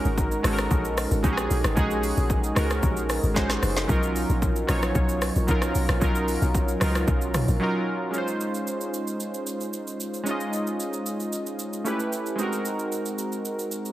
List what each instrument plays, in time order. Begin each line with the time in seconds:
Already playing: synth keys G#3 C#4 D#4 F#4 A#4
0.05 log drum bass G#1, shaker
0.18 kick, shaker
0.32 shaker
0.43 log drum bass G#1, synth keys G#3 C#4 D#4 F#4 A4, cross-stick, open hi-hat, shaker
0.53 synth keys A#4
0.58 cross-stick, shaker
0.71 log drum bass A#1, kick, shaker
0.85 shaker
0.97 cross-stick, open hi-hat, shaker
1.11 log drum bass G#1, shaker
1.22 log drum bass A#1, synth keys G#3 C#4 D#4 F#4 G4, kick, shaker
1.33 synth keys G#4
1.37 cross-stick, shaker
1.51 log drum bass A#1, open hi-hat, shaker
1.64 log drum bass G#1, cross-stick, shaker
1.75 log drum bass A#1, synth keys G#3 C#4 D#4 F#4 G#4, kick, shaker
1.91 shaker
2.03 open hi-hat, shaker
2.17 log drum bass A#1, shaker
2.30 kick, shaker
2.44 shaker
2.55 log drum bass C#2, synth keys G#3 C#4 D#4 F#4 A#4, cross-stick, open hi-hat, shaker
2.70 cross-stick, shaker
2.83 log drum bass A#1, kick, shaker
2.97 shaker
3.09 cross-stick, open hi-hat, shaker
3.23 log drum bass G#1, shaker
3.34 synth keys G#3 C#4 D#4 F#4 C5, kick, snare, shaker
3.50 cross-stick, snare, shaker
3.63 log drum bass F#1, cross-stick, open hi-hat, shaker
3.76 snare, shaker
3.87 log drum bass B1, synth keys F#3 C#4 D#4 F4 A#4, kick, shaker
4.03 shaker
4.16 open hi-hat, shaker
4.30 log drum bass A#1, shaker
4.42 kick, shaker
4.56 shaker
4.67 log drum bass A#1, synth keys F#3 C#4 D#4 F4 C#5, cross-stick, open hi-hat, shaker
4.82 cross-stick, shaker
4.95 log drum bass B1, kick, shaker
5.09 shaker
5.22 cross-stick, open hi-hat, shaker
5.36 log drum bass A#1, shaker
5.47 log drum bass B1, synth keys F#3 C#4 D#4 F4 A#4, kick, shaker
5.62 cross-stick, shaker
5.75 log drum bass B1, open hi-hat, shaker
5.89 log drum bass A#1, cross-stick, shaker
6.00 log drum bass B1, synth keys F#3 C#4 D#4 F4 A#4, kick, shaker
6.15 shaker
6.28 open hi-hat, shaker
6.42 log drum bass B1, shaker
6.55 kick, shaker
6.68 shaker
6.80 log drum bass C#2, synth keys F#3 C#4 D#4 F4 A#4, cross-stick, open hi-hat, shaker
6.95 cross-stick, shaker
7.08 log drum bass B1, kick, shaker
7.21 shaker
7.34 cross-stick, mid tom, open hi-hat, shaker
7.48 log drum bass A#1, shaker
7.60 synth keys F#3 C#4 D#4 F4 A#4
8.11 synth keys G#3 C#4 D#4, shaker
8.16 synth keys F4 C5
8.28 shaker
8.41 shaker
8.54 shaker
8.67 shaker
8.81 shaker
8.94 shaker
9.07 shaker
9.20 shaker
9.34 shaker
9.47 shaker
9.61 shaker
9.73 shaker
9.87 shaker
10.00 shaker
10.14 shaker
10.23 synth keys G#3 C#4 D#4, shaker
10.29 synth keys F4 D#5
10.40 shaker
10.53 shaker
10.67 shaker
10.80 shaker
10.93 shaker
11.06 shaker
11.20 shaker
11.33 shaker
11.46 shaker
11.59 shaker
11.73 shaker
11.84 synth keys A3 C#4 E4 G4 B4, shaker
12.00 shaker
12.13 shaker
12.26 shaker
12.36 synth keys G#3 C4 D#4, shaker
12.41 synth keys F#4 A#4
12.53 shaker
12.65 shaker
12.79 shaker
12.92 shaker
13.06 shaker
13.19 shaker
13.32 shaker
13.45 shaker
13.59 shaker
13.72 shaker
13.85 shaker